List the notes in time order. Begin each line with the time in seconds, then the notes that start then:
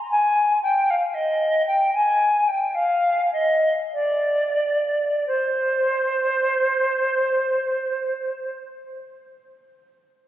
0.10 G#5
0.63 G5
0.90 F5
1.14 D#5
1.66 G5
1.93 G#5
2.47 G5
2.74 F5
3.33 D#5
3.93 D5
5.27 C5